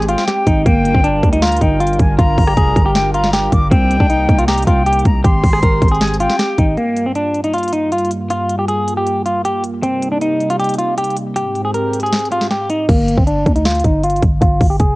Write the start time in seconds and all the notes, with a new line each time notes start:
Already playing: G#1 G#3 C4 G4
0.02 closed hi-hat
0.09 F4 G5, closed hi-hat
0.18 snare
0.28 G4, snare, closed hi-hat
0.47 G#1 D#4, kick, closed hi-hat
0.66 G1 G3 A#3 D4 F4 A#4 G5, kick, closed hi-hat
0.85 closed hi-hat
0.95 G1 C4, kick
1.04 D4, closed hi-hat
1.23 D2, kick, closed hi-hat
1.33 D#4, closed hi-hat
1.42 F4 A#5, snare, closed hi-hat
1.47 closed hi-hat
1.52 closed hi-hat
1.57 closed hi-hat
1.61 G1 D#4 G5, kick, closed hi-hat
1.80 F4, closed hi-hat
1.87 closed hi-hat
1.93 closed hi-hat
2.00 G1 G#5, kick, closed hi-hat
2.19 G1 F4 A#5, kick, closed hi-hat
2.38 G1, kick, open hi-hat
2.47 G4, cross-stick
2.57 F1 G#4, kick, closed hi-hat
2.76 G1, kick, closed hi-hat
2.86 G4
2.95 G5, snare, closed hi-hat
3.14 F4 A#5, closed hi-hat
3.24 snare
3.33 G4, snare, closed hi-hat
3.52 G1 D6, kick, closed hi-hat
3.71 C2 C3 A#3 C4 D#4 G5, kick, closed hi-hat
3.91 closed hi-hat
4.00 C2 D4, kick
4.10 D#4, closed hi-hat
4.29 C2, kick, closed hi-hat
4.39 F4, closed hi-hat
4.48 G4 A#5, snare, closed hi-hat
4.53 closed hi-hat
4.58 closed hi-hat
4.62 closed hi-hat
4.67 C2 F4 G5, kick, closed hi-hat
4.86 G4, closed hi-hat
4.93 closed hi-hat
4.99 closed hi-hat
5.05 C2 A#5, kick, closed hi-hat
5.24 G#1 G#3 C4 G4 C6, kick, closed hi-hat
5.44 G#1, kick, open hi-hat
5.53 G#4, cross-stick
5.63 G#1 A#4, kick, closed hi-hat
5.82 G#1, kick, closed hi-hat
5.88 G#4, closed hi-hat
5.95 closed hi-hat
6.01 G#5, snare, closed hi-hat
6.07 closed hi-hat
6.14 closed hi-hat
6.20 F4 G5, closed hi-hat
6.30 snare
6.39 G4, snare, closed hi-hat
6.58 G#1 D#4, kick, closed hi-hat
6.77 G2 G3 A#3 F4, closed hi-hat
6.97 closed hi-hat
7.06 C4
7.16 D4, closed hi-hat
7.35 closed hi-hat
7.44 D#4, closed hi-hat
7.54 F4, closed hi-hat
7.58 closed hi-hat
7.63 closed hi-hat
7.68 closed hi-hat
7.73 D#4, closed hi-hat
7.92 F4, closed hi-hat
7.98 closed hi-hat
8.05 closed hi-hat
8.11 closed hi-hat
8.30 F4, closed hi-hat
8.49 closed hi-hat
8.59 G4
8.68 G#4, closed hi-hat
8.88 closed hi-hat
8.97 G4
9.07 closed hi-hat
9.26 F4, closed hi-hat
9.45 G4, closed hi-hat
9.64 closed hi-hat
9.83 C3 G3 C4 D#4, closed hi-hat
10.02 closed hi-hat
10.12 D4
10.21 D#4, closed hi-hat
10.40 closed hi-hat
10.50 F4, closed hi-hat
10.59 G4, closed hi-hat
10.64 closed hi-hat
10.69 closed hi-hat
10.74 closed hi-hat
10.78 F4, closed hi-hat
10.98 G4, closed hi-hat
11.04 closed hi-hat
11.10 closed hi-hat
11.17 closed hi-hat
11.36 G#2 G#3 C4 G4, closed hi-hat
11.55 closed hi-hat
11.65 G#4
11.74 A#4, closed hi-hat
11.93 closed hi-hat
12.00 G#4, closed hi-hat
12.06 closed hi-hat
12.12 snare, closed hi-hat
12.19 closed hi-hat
12.25 closed hi-hat
12.31 F4, closed hi-hat
12.41 snare
12.50 G4, snare, closed hi-hat
12.70 D#4, closed hi-hat
12.89 G1 A#3, kick, closed hi-hat, crash
13.08 closed hi-hat
13.17 G1 C4, kick
13.27 D4, closed hi-hat
13.46 D2, kick, closed hi-hat
13.56 D#4, closed hi-hat
13.65 F4, snare, closed hi-hat
13.70 closed hi-hat
13.75 closed hi-hat
13.79 closed hi-hat
13.84 G1 D#4, kick, closed hi-hat
14.03 F4, closed hi-hat
14.10 closed hi-hat
14.16 closed hi-hat
14.22 G1, kick, closed hi-hat
14.42 G1 F4, kick, closed hi-hat
14.61 G1, kick, open hi-hat
14.70 G4
14.80 F1 G#4, kick, closed hi-hat